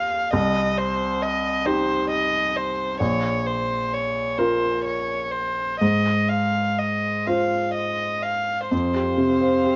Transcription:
Already playing: D#2 F4 G4 F5
0.33 C2 D#5
0.78 C5
1.22 D#5
1.65 D#4 G4 C5
2.10 D#5
2.57 C5
3.00 A#1 C#5
3.46 C5
3.93 C#5
4.38 F4 A#4 C5
4.84 C#5
5.31 C5
5.80 G#2 D#5
6.29 F5
6.79 D#5
7.26 F4 C5 F5
7.74 D#5
8.22 F5
8.70 F2 C4 G4 C5 F5
8.94 G4
9.17 C3
9.41 C5
9.64 G4

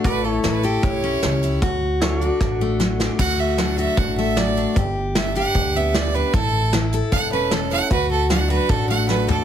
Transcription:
Already playing: A3
0.04 A1 A2 F#4 A4 B4 D5, kick, closed hi-hat
0.24 A4 C#5
0.30 E4
0.44 A1 E3 E4 B4, snare, closed hi-hat
0.63 G4 A4, closed hi-hat
0.83 B1 A2 C#5, kick, closed hi-hat
1.04 C#4
1.22 C#2 E3, snare, closed hi-hat
1.43 E4, closed hi-hat
1.62 D2 D3 F#4, kick, closed hi-hat
2.01 F#3 D4 E4 A4 C#5, snare, closed hi-hat
2.21 F#4 D5, closed hi-hat
2.26 F#4
2.40 A1 A2, kick, snare
2.61 A3
2.80 F#3, snare
3.00 D4, snare
3.19 D2 D3 F#4 F#5, kick, crash
3.40 E5
3.58 F#3 D4 F#5, snare, closed hi-hat
3.78 F#4 E5, closed hi-hat
3.97 A1 A2 F#5, kick, closed hi-hat
4.18 A3 E5
4.37 F#3 D5, snare, closed hi-hat
4.57 D4, closed hi-hat
4.76 G1 G2 G4, kick, closed hi-hat
5.15 G3 D4 E5, snare, closed hi-hat
5.35 G4 F#5, closed hi-hat
5.55 D2 D3, kick, closed hi-hat
5.76 B3 E5
5.94 G3 D5, snare, closed hi-hat
6.14 D4 B4, closed hi-hat
6.33 A1 A2 E4 A4, kick, closed hi-hat
6.73 E3 E4, snare, closed hi-hat
6.92 A4, closed hi-hat
7.12 E1 A2 F#5, kick, closed hi-hat
7.32 C#4 B4
7.51 E3 A4, snare, closed hi-hat
7.71 E4 F#5, closed hi-hat
7.90 D2 D3 F#4 B4, kick, closed hi-hat
8.11 A4
8.30 F#3 D4 F#5, snare, closed hi-hat
8.50 F#4 B4, closed hi-hat
8.69 A1 A2 A4, kick, closed hi-hat
8.89 A3 F#5
9.09 F#3 B4, snare
9.28 D4 A4, floor tom

